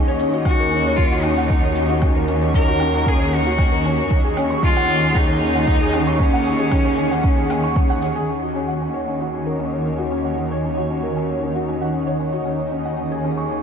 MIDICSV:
0, 0, Header, 1, 6, 480
1, 0, Start_track
1, 0, Key_signature, -6, "minor"
1, 0, Tempo, 521739
1, 1859, Time_signature, 4, 2, 24, 8
1, 12536, End_track
2, 0, Start_track
2, 0, Title_t, "Ambient pad"
2, 0, Program_c, 0, 92
2, 0, Note_on_c, 0, 51, 76
2, 0, Note_on_c, 0, 63, 81
2, 0, Note_on_c, 0, 68, 83
2, 0, Note_on_c, 0, 75, 88
2, 393, Note_on_c, 0, 73, 88
2, 1468, Note_off_c, 0, 68, 0
2, 3873, Note_on_c, 0, 68, 84
2, 5312, Note_off_c, 0, 73, 0
2, 7618, Note_off_c, 0, 75, 0
2, 7621, Note_off_c, 0, 63, 0
2, 7791, Note_on_c, 0, 75, 70
2, 7887, Note_on_c, 0, 63, 66
2, 7951, Note_on_c, 0, 73, 70
2, 8356, Note_off_c, 0, 68, 0
2, 11949, Note_on_c, 0, 68, 77
2, 12536, Note_off_c, 0, 51, 0
2, 12536, Note_off_c, 0, 63, 0
2, 12536, Note_off_c, 0, 68, 0
2, 12536, Note_off_c, 0, 73, 0
2, 12536, Note_off_c, 0, 75, 0
2, 12536, End_track
3, 0, Start_track
3, 0, Title_t, "Cello"
3, 0, Program_c, 1, 42
3, 422, Note_on_c, 1, 66, 107
3, 884, Note_on_c, 1, 65, 91
3, 898, Note_off_c, 1, 66, 0
3, 1123, Note_on_c, 1, 63, 88
3, 1137, Note_off_c, 1, 65, 0
3, 1851, Note_off_c, 1, 63, 0
3, 2343, Note_on_c, 1, 70, 113
3, 2835, Note_on_c, 1, 68, 94
3, 2849, Note_off_c, 1, 70, 0
3, 3081, Note_on_c, 1, 66, 90
3, 3094, Note_off_c, 1, 68, 0
3, 3790, Note_off_c, 1, 66, 0
3, 4265, Note_on_c, 1, 65, 117
3, 4747, Note_on_c, 1, 63, 104
3, 4761, Note_off_c, 1, 65, 0
3, 5706, Note_on_c, 1, 61, 102
3, 5720, Note_off_c, 1, 63, 0
3, 7143, Note_off_c, 1, 61, 0
3, 12536, End_track
4, 0, Start_track
4, 0, Title_t, "Felt piano"
4, 0, Program_c, 2, 0
4, 69, Note_on_c, 2, 73, 99
4, 85, Control_c, 2, 64, 127
4, 178, Note_off_c, 2, 73, 0
4, 184, Note_on_c, 2, 61, 71
4, 296, Note_off_c, 2, 61, 0
4, 304, Note_on_c, 2, 66, 95
4, 416, Note_off_c, 2, 66, 0
4, 427, Note_on_c, 2, 61, 78
4, 492, Note_off_c, 2, 61, 0
4, 551, Note_on_c, 2, 70, 78
4, 614, Note_off_c, 2, 70, 0
4, 664, Note_on_c, 2, 61, 84
4, 776, Note_off_c, 2, 61, 0
4, 787, Note_on_c, 2, 73, 72
4, 852, Note_off_c, 2, 73, 0
4, 906, Note_on_c, 2, 61, 78
4, 1017, Note_off_c, 2, 61, 0
4, 1025, Note_on_c, 2, 66, 95
4, 1091, Note_off_c, 2, 66, 0
4, 1147, Note_on_c, 2, 61, 92
4, 1258, Note_off_c, 2, 61, 0
4, 1265, Note_on_c, 2, 78, 71
4, 1376, Note_off_c, 2, 78, 0
4, 1388, Note_on_c, 2, 61, 72
4, 1498, Note_off_c, 2, 61, 0
4, 1509, Note_on_c, 2, 73, 91
4, 1618, Note_off_c, 2, 73, 0
4, 1627, Note_on_c, 2, 61, 75
4, 1737, Note_off_c, 2, 61, 0
4, 1744, Note_on_c, 2, 66, 92
4, 1856, Note_off_c, 2, 66, 0
4, 1866, Note_on_c, 2, 61, 74
4, 1931, Note_off_c, 2, 61, 0
4, 1987, Note_on_c, 2, 70, 76
4, 2052, Note_off_c, 2, 70, 0
4, 2105, Note_on_c, 2, 61, 94
4, 2216, Note_off_c, 2, 61, 0
4, 2225, Note_on_c, 2, 73, 74
4, 2291, Note_off_c, 2, 73, 0
4, 2341, Note_on_c, 2, 61, 72
4, 2455, Note_off_c, 2, 61, 0
4, 2462, Note_on_c, 2, 66, 101
4, 2529, Note_off_c, 2, 66, 0
4, 2583, Note_on_c, 2, 61, 95
4, 2696, Note_off_c, 2, 61, 0
4, 2705, Note_on_c, 2, 78, 73
4, 2816, Note_off_c, 2, 78, 0
4, 2822, Note_on_c, 2, 61, 84
4, 2935, Note_off_c, 2, 61, 0
4, 2939, Note_on_c, 2, 73, 93
4, 3053, Note_off_c, 2, 73, 0
4, 3065, Note_on_c, 2, 61, 72
4, 3176, Note_off_c, 2, 61, 0
4, 3184, Note_on_c, 2, 66, 96
4, 3296, Note_off_c, 2, 66, 0
4, 3308, Note_on_c, 2, 61, 76
4, 3372, Note_off_c, 2, 61, 0
4, 3423, Note_on_c, 2, 70, 76
4, 3490, Note_off_c, 2, 70, 0
4, 3545, Note_on_c, 2, 61, 97
4, 3656, Note_off_c, 2, 61, 0
4, 3666, Note_on_c, 2, 73, 69
4, 3731, Note_off_c, 2, 73, 0
4, 3788, Note_on_c, 2, 61, 72
4, 3792, Control_c, 2, 64, 0
4, 3898, Note_off_c, 2, 61, 0
4, 3903, Note_on_c, 2, 68, 97
4, 3945, Control_c, 2, 64, 127
4, 3970, Note_off_c, 2, 68, 0
4, 4023, Note_on_c, 2, 61, 94
4, 4135, Note_off_c, 2, 61, 0
4, 4143, Note_on_c, 2, 85, 78
4, 4256, Note_off_c, 2, 85, 0
4, 4265, Note_on_c, 2, 61, 81
4, 4377, Note_off_c, 2, 61, 0
4, 4385, Note_on_c, 2, 78, 107
4, 4496, Note_off_c, 2, 78, 0
4, 4502, Note_on_c, 2, 61, 71
4, 4615, Note_off_c, 2, 61, 0
4, 4626, Note_on_c, 2, 68, 92
4, 4737, Note_off_c, 2, 68, 0
4, 4747, Note_on_c, 2, 61, 82
4, 4812, Note_off_c, 2, 61, 0
4, 4866, Note_on_c, 2, 73, 73
4, 4931, Note_off_c, 2, 73, 0
4, 4984, Note_on_c, 2, 61, 95
4, 5096, Note_off_c, 2, 61, 0
4, 5106, Note_on_c, 2, 78, 78
4, 5171, Note_off_c, 2, 78, 0
4, 5225, Note_on_c, 2, 61, 76
4, 5336, Note_off_c, 2, 61, 0
4, 5346, Note_on_c, 2, 68, 98
4, 5411, Note_off_c, 2, 68, 0
4, 5465, Note_on_c, 2, 61, 98
4, 5576, Note_off_c, 2, 61, 0
4, 5586, Note_on_c, 2, 85, 71
4, 5697, Note_off_c, 2, 85, 0
4, 5713, Note_on_c, 2, 61, 80
4, 5821, Note_off_c, 2, 61, 0
4, 5827, Note_on_c, 2, 78, 92
4, 5937, Note_off_c, 2, 78, 0
4, 5947, Note_on_c, 2, 61, 74
4, 6057, Note_off_c, 2, 61, 0
4, 6063, Note_on_c, 2, 68, 100
4, 6175, Note_off_c, 2, 68, 0
4, 6185, Note_on_c, 2, 61, 80
4, 6251, Note_off_c, 2, 61, 0
4, 6301, Note_on_c, 2, 73, 76
4, 6369, Note_off_c, 2, 73, 0
4, 6421, Note_on_c, 2, 61, 97
4, 6534, Note_off_c, 2, 61, 0
4, 6542, Note_on_c, 2, 78, 73
4, 6609, Note_off_c, 2, 78, 0
4, 6662, Note_on_c, 2, 61, 83
4, 6775, Note_off_c, 2, 61, 0
4, 6782, Note_on_c, 2, 68, 95
4, 6849, Note_off_c, 2, 68, 0
4, 6900, Note_on_c, 2, 61, 95
4, 7014, Note_off_c, 2, 61, 0
4, 7025, Note_on_c, 2, 85, 75
4, 7136, Note_off_c, 2, 85, 0
4, 7143, Note_on_c, 2, 61, 75
4, 7255, Note_off_c, 2, 61, 0
4, 7267, Note_on_c, 2, 78, 102
4, 7377, Note_off_c, 2, 78, 0
4, 7384, Note_on_c, 2, 61, 76
4, 7496, Note_off_c, 2, 61, 0
4, 7504, Note_on_c, 2, 68, 94
4, 7616, Note_off_c, 2, 68, 0
4, 7625, Note_on_c, 2, 61, 59
4, 7630, Control_c, 2, 64, 0
4, 7736, Note_off_c, 2, 61, 0
4, 7744, Note_on_c, 2, 66, 69
4, 7775, Control_c, 2, 64, 127
4, 7811, Note_off_c, 2, 66, 0
4, 7864, Note_on_c, 2, 61, 73
4, 7976, Note_off_c, 2, 61, 0
4, 7985, Note_on_c, 2, 78, 56
4, 8096, Note_off_c, 2, 78, 0
4, 8107, Note_on_c, 2, 61, 60
4, 8217, Note_off_c, 2, 61, 0
4, 8223, Note_on_c, 2, 73, 75
4, 8335, Note_off_c, 2, 73, 0
4, 8344, Note_on_c, 2, 61, 55
4, 8456, Note_off_c, 2, 61, 0
4, 8465, Note_on_c, 2, 66, 69
4, 8576, Note_off_c, 2, 66, 0
4, 8587, Note_on_c, 2, 61, 62
4, 8651, Note_off_c, 2, 61, 0
4, 8708, Note_on_c, 2, 70, 59
4, 8772, Note_off_c, 2, 70, 0
4, 8824, Note_on_c, 2, 61, 76
4, 8936, Note_off_c, 2, 61, 0
4, 8944, Note_on_c, 2, 73, 58
4, 9010, Note_off_c, 2, 73, 0
4, 9065, Note_on_c, 2, 61, 61
4, 9176, Note_off_c, 2, 61, 0
4, 9180, Note_on_c, 2, 66, 73
4, 9248, Note_off_c, 2, 66, 0
4, 9304, Note_on_c, 2, 61, 82
4, 9416, Note_off_c, 2, 61, 0
4, 9428, Note_on_c, 2, 78, 56
4, 9538, Note_off_c, 2, 78, 0
4, 9551, Note_on_c, 2, 61, 61
4, 9659, Note_off_c, 2, 61, 0
4, 9671, Note_on_c, 2, 73, 78
4, 9780, Note_off_c, 2, 73, 0
4, 9788, Note_on_c, 2, 61, 57
4, 9898, Note_off_c, 2, 61, 0
4, 9910, Note_on_c, 2, 66, 76
4, 10019, Note_off_c, 2, 66, 0
4, 10028, Note_on_c, 2, 61, 64
4, 10092, Note_off_c, 2, 61, 0
4, 10149, Note_on_c, 2, 70, 64
4, 10213, Note_off_c, 2, 70, 0
4, 10268, Note_on_c, 2, 61, 77
4, 10378, Note_off_c, 2, 61, 0
4, 10390, Note_on_c, 2, 73, 57
4, 10454, Note_off_c, 2, 73, 0
4, 10510, Note_on_c, 2, 61, 65
4, 10619, Note_off_c, 2, 61, 0
4, 10625, Note_on_c, 2, 66, 76
4, 10691, Note_off_c, 2, 66, 0
4, 10749, Note_on_c, 2, 61, 79
4, 10858, Note_off_c, 2, 61, 0
4, 10868, Note_on_c, 2, 78, 64
4, 10978, Note_off_c, 2, 78, 0
4, 10981, Note_on_c, 2, 61, 60
4, 11095, Note_off_c, 2, 61, 0
4, 11100, Note_on_c, 2, 73, 78
4, 11214, Note_off_c, 2, 73, 0
4, 11220, Note_on_c, 2, 61, 60
4, 11334, Note_off_c, 2, 61, 0
4, 11338, Note_on_c, 2, 66, 77
4, 11453, Note_off_c, 2, 66, 0
4, 11456, Note_on_c, 2, 61, 62
4, 11472, Control_c, 2, 64, 0
4, 11526, Note_off_c, 2, 61, 0
4, 11577, Note_on_c, 2, 73, 61
4, 11621, Control_c, 2, 64, 127
4, 11647, Note_off_c, 2, 73, 0
4, 11700, Note_on_c, 2, 61, 77
4, 11814, Note_off_c, 2, 61, 0
4, 11824, Note_on_c, 2, 78, 61
4, 11890, Note_off_c, 2, 78, 0
4, 11939, Note_on_c, 2, 61, 61
4, 12053, Note_off_c, 2, 61, 0
4, 12063, Note_on_c, 2, 68, 84
4, 12130, Note_off_c, 2, 68, 0
4, 12182, Note_on_c, 2, 61, 77
4, 12295, Note_off_c, 2, 61, 0
4, 12305, Note_on_c, 2, 85, 56
4, 12416, Note_off_c, 2, 85, 0
4, 12426, Note_on_c, 2, 61, 62
4, 12536, Note_off_c, 2, 61, 0
4, 12536, End_track
5, 0, Start_track
5, 0, Title_t, "Cello section"
5, 0, Program_c, 3, 48
5, 0, Note_on_c, 3, 39, 77
5, 3756, Note_off_c, 3, 39, 0
5, 3780, Note_on_c, 3, 39, 82
5, 7596, Note_off_c, 3, 39, 0
5, 7618, Note_on_c, 3, 39, 69
5, 11435, Note_off_c, 3, 39, 0
5, 11462, Note_on_c, 3, 39, 68
5, 12536, Note_off_c, 3, 39, 0
5, 12536, End_track
6, 0, Start_track
6, 0, Title_t, "Drums"
6, 55, Note_on_c, 9, 82, 18
6, 147, Note_off_c, 9, 82, 0
6, 177, Note_on_c, 9, 82, 67
6, 269, Note_off_c, 9, 82, 0
6, 296, Note_on_c, 9, 82, 31
6, 388, Note_off_c, 9, 82, 0
6, 417, Note_on_c, 9, 77, 53
6, 417, Note_on_c, 9, 82, 37
6, 419, Note_on_c, 9, 36, 93
6, 509, Note_off_c, 9, 77, 0
6, 509, Note_off_c, 9, 82, 0
6, 511, Note_off_c, 9, 36, 0
6, 539, Note_on_c, 9, 82, 19
6, 631, Note_off_c, 9, 82, 0
6, 657, Note_on_c, 9, 82, 69
6, 749, Note_off_c, 9, 82, 0
6, 776, Note_on_c, 9, 82, 27
6, 868, Note_off_c, 9, 82, 0
6, 897, Note_on_c, 9, 82, 40
6, 900, Note_on_c, 9, 36, 91
6, 989, Note_off_c, 9, 82, 0
6, 992, Note_off_c, 9, 36, 0
6, 1013, Note_on_c, 9, 82, 19
6, 1105, Note_off_c, 9, 82, 0
6, 1134, Note_on_c, 9, 77, 56
6, 1134, Note_on_c, 9, 82, 70
6, 1226, Note_off_c, 9, 77, 0
6, 1226, Note_off_c, 9, 82, 0
6, 1258, Note_on_c, 9, 82, 30
6, 1350, Note_off_c, 9, 82, 0
6, 1375, Note_on_c, 9, 82, 35
6, 1380, Note_on_c, 9, 36, 101
6, 1467, Note_off_c, 9, 82, 0
6, 1472, Note_off_c, 9, 36, 0
6, 1495, Note_on_c, 9, 82, 20
6, 1587, Note_off_c, 9, 82, 0
6, 1616, Note_on_c, 9, 82, 72
6, 1708, Note_off_c, 9, 82, 0
6, 1736, Note_on_c, 9, 82, 32
6, 1828, Note_off_c, 9, 82, 0
6, 1856, Note_on_c, 9, 77, 60
6, 1856, Note_on_c, 9, 82, 37
6, 1860, Note_on_c, 9, 36, 96
6, 1948, Note_off_c, 9, 77, 0
6, 1948, Note_off_c, 9, 82, 0
6, 1952, Note_off_c, 9, 36, 0
6, 1974, Note_on_c, 9, 82, 19
6, 2066, Note_off_c, 9, 82, 0
6, 2096, Note_on_c, 9, 82, 61
6, 2188, Note_off_c, 9, 82, 0
6, 2213, Note_on_c, 9, 82, 30
6, 2305, Note_off_c, 9, 82, 0
6, 2335, Note_on_c, 9, 82, 36
6, 2340, Note_on_c, 9, 36, 92
6, 2427, Note_off_c, 9, 82, 0
6, 2432, Note_off_c, 9, 36, 0
6, 2456, Note_on_c, 9, 82, 19
6, 2548, Note_off_c, 9, 82, 0
6, 2575, Note_on_c, 9, 77, 60
6, 2575, Note_on_c, 9, 82, 69
6, 2667, Note_off_c, 9, 77, 0
6, 2667, Note_off_c, 9, 82, 0
6, 2698, Note_on_c, 9, 82, 29
6, 2790, Note_off_c, 9, 82, 0
6, 2820, Note_on_c, 9, 36, 88
6, 2821, Note_on_c, 9, 82, 37
6, 2912, Note_off_c, 9, 36, 0
6, 2913, Note_off_c, 9, 82, 0
6, 2941, Note_on_c, 9, 82, 19
6, 3033, Note_off_c, 9, 82, 0
6, 3057, Note_on_c, 9, 82, 65
6, 3149, Note_off_c, 9, 82, 0
6, 3179, Note_on_c, 9, 82, 27
6, 3271, Note_off_c, 9, 82, 0
6, 3297, Note_on_c, 9, 77, 58
6, 3297, Note_on_c, 9, 82, 39
6, 3300, Note_on_c, 9, 36, 97
6, 3389, Note_off_c, 9, 77, 0
6, 3389, Note_off_c, 9, 82, 0
6, 3392, Note_off_c, 9, 36, 0
6, 3422, Note_on_c, 9, 82, 18
6, 3514, Note_off_c, 9, 82, 0
6, 3541, Note_on_c, 9, 82, 72
6, 3633, Note_off_c, 9, 82, 0
6, 3662, Note_on_c, 9, 82, 30
6, 3754, Note_off_c, 9, 82, 0
6, 3780, Note_on_c, 9, 36, 94
6, 3781, Note_on_c, 9, 82, 38
6, 3872, Note_off_c, 9, 36, 0
6, 3873, Note_off_c, 9, 82, 0
6, 3902, Note_on_c, 9, 82, 17
6, 3994, Note_off_c, 9, 82, 0
6, 4020, Note_on_c, 9, 77, 60
6, 4020, Note_on_c, 9, 82, 67
6, 4112, Note_off_c, 9, 77, 0
6, 4112, Note_off_c, 9, 82, 0
6, 4142, Note_on_c, 9, 82, 28
6, 4234, Note_off_c, 9, 82, 0
6, 4259, Note_on_c, 9, 36, 91
6, 4260, Note_on_c, 9, 82, 35
6, 4351, Note_off_c, 9, 36, 0
6, 4352, Note_off_c, 9, 82, 0
6, 4383, Note_on_c, 9, 82, 18
6, 4475, Note_off_c, 9, 82, 0
6, 4502, Note_on_c, 9, 82, 68
6, 4594, Note_off_c, 9, 82, 0
6, 4620, Note_on_c, 9, 82, 28
6, 4712, Note_off_c, 9, 82, 0
6, 4740, Note_on_c, 9, 36, 94
6, 4742, Note_on_c, 9, 77, 61
6, 4742, Note_on_c, 9, 82, 34
6, 4832, Note_off_c, 9, 36, 0
6, 4834, Note_off_c, 9, 77, 0
6, 4834, Note_off_c, 9, 82, 0
6, 4862, Note_on_c, 9, 82, 19
6, 4954, Note_off_c, 9, 82, 0
6, 4979, Note_on_c, 9, 82, 71
6, 5071, Note_off_c, 9, 82, 0
6, 5099, Note_on_c, 9, 82, 27
6, 5191, Note_off_c, 9, 82, 0
6, 5216, Note_on_c, 9, 82, 36
6, 5221, Note_on_c, 9, 36, 103
6, 5308, Note_off_c, 9, 82, 0
6, 5313, Note_off_c, 9, 36, 0
6, 5342, Note_on_c, 9, 82, 19
6, 5434, Note_off_c, 9, 82, 0
6, 5458, Note_on_c, 9, 77, 61
6, 5458, Note_on_c, 9, 82, 75
6, 5550, Note_off_c, 9, 77, 0
6, 5550, Note_off_c, 9, 82, 0
6, 5578, Note_on_c, 9, 82, 30
6, 5670, Note_off_c, 9, 82, 0
6, 5700, Note_on_c, 9, 82, 41
6, 5701, Note_on_c, 9, 36, 94
6, 5792, Note_off_c, 9, 82, 0
6, 5793, Note_off_c, 9, 36, 0
6, 5818, Note_on_c, 9, 82, 18
6, 5910, Note_off_c, 9, 82, 0
6, 5936, Note_on_c, 9, 82, 64
6, 6028, Note_off_c, 9, 82, 0
6, 6061, Note_on_c, 9, 82, 31
6, 6153, Note_off_c, 9, 82, 0
6, 6178, Note_on_c, 9, 77, 58
6, 6178, Note_on_c, 9, 82, 37
6, 6181, Note_on_c, 9, 36, 94
6, 6270, Note_off_c, 9, 77, 0
6, 6270, Note_off_c, 9, 82, 0
6, 6273, Note_off_c, 9, 36, 0
6, 6304, Note_on_c, 9, 82, 19
6, 6396, Note_off_c, 9, 82, 0
6, 6424, Note_on_c, 9, 82, 69
6, 6516, Note_off_c, 9, 82, 0
6, 6546, Note_on_c, 9, 82, 28
6, 6638, Note_off_c, 9, 82, 0
6, 6659, Note_on_c, 9, 82, 39
6, 6661, Note_on_c, 9, 36, 100
6, 6751, Note_off_c, 9, 82, 0
6, 6753, Note_off_c, 9, 36, 0
6, 6778, Note_on_c, 9, 82, 20
6, 6870, Note_off_c, 9, 82, 0
6, 6901, Note_on_c, 9, 77, 63
6, 6901, Note_on_c, 9, 82, 64
6, 6993, Note_off_c, 9, 77, 0
6, 6993, Note_off_c, 9, 82, 0
6, 7022, Note_on_c, 9, 82, 28
6, 7114, Note_off_c, 9, 82, 0
6, 7140, Note_on_c, 9, 82, 37
6, 7141, Note_on_c, 9, 36, 101
6, 7232, Note_off_c, 9, 82, 0
6, 7233, Note_off_c, 9, 36, 0
6, 7256, Note_on_c, 9, 82, 19
6, 7348, Note_off_c, 9, 82, 0
6, 7378, Note_on_c, 9, 82, 71
6, 7470, Note_off_c, 9, 82, 0
6, 7499, Note_on_c, 9, 82, 29
6, 7591, Note_off_c, 9, 82, 0
6, 12536, End_track
0, 0, End_of_file